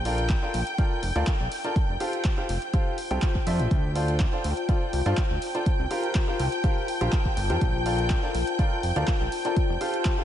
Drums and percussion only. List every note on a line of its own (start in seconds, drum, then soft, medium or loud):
0.05 open hi-hat loud
0.18 closed hi-hat medium
0.29 kick loud
0.29 clap loud
0.29 closed hi-hat medium
0.54 open hi-hat loud
0.67 closed hi-hat medium
0.78 kick loud
0.78 closed hi-hat soft
1.03 open hi-hat loud
1.16 closed hi-hat medium
1.27 kick loud
1.27 clap loud
1.27 closed hi-hat soft
1.52 open hi-hat loud
1.64 closed hi-hat medium
1.76 kick loud
1.76 closed hi-hat medium
2.00 open hi-hat loud
2.13 closed hi-hat medium
2.24 kick loud
2.24 clap loud
2.24 closed hi-hat soft
2.49 open hi-hat loud
2.62 closed hi-hat medium
2.73 kick loud
2.73 closed hi-hat medium
2.98 open hi-hat loud
3.11 closed hi-hat medium
3.22 kick loud
3.22 clap loud
3.22 closed hi-hat medium
3.35 kick medium
3.47 open hi-hat loud
3.60 closed hi-hat medium
3.71 kick loud
3.71 closed hi-hat soft
3.95 open hi-hat loud
4.08 closed hi-hat medium
4.20 kick loud
4.20 clap loud
4.20 closed hi-hat medium
4.44 open hi-hat loud
4.57 closed hi-hat medium
4.69 kick loud
4.69 closed hi-hat medium
4.93 open hi-hat loud
5.06 closed hi-hat medium
5.17 kick loud
5.17 clap loud
5.17 closed hi-hat medium
5.42 open hi-hat loud
5.55 closed hi-hat medium
5.66 kick loud
5.66 closed hi-hat medium
5.91 open hi-hat loud
6.03 closed hi-hat medium
6.15 kick loud
6.15 clap loud
6.15 closed hi-hat medium
6.39 open hi-hat loud
6.52 closed hi-hat medium
6.64 kick loud
6.64 closed hi-hat medium
6.88 open hi-hat loud
7.01 closed hi-hat medium
7.12 kick loud
7.12 clap loud
7.12 closed hi-hat medium
7.25 kick medium
7.37 open hi-hat loud
7.50 closed hi-hat medium
7.61 kick loud
7.61 closed hi-hat medium
7.86 open hi-hat loud
7.99 closed hi-hat medium
8.10 kick loud
8.10 clap loud
8.10 closed hi-hat medium
8.35 open hi-hat loud
8.47 closed hi-hat medium
8.59 kick loud
8.59 closed hi-hat medium
8.83 open hi-hat loud
8.96 closed hi-hat medium
9.07 kick loud
9.07 clap loud
9.07 closed hi-hat medium
9.32 open hi-hat loud
9.45 closed hi-hat medium
9.56 kick loud
9.56 closed hi-hat medium
9.81 open hi-hat loud
9.94 closed hi-hat medium
10.05 kick loud
10.05 clap loud
10.05 closed hi-hat medium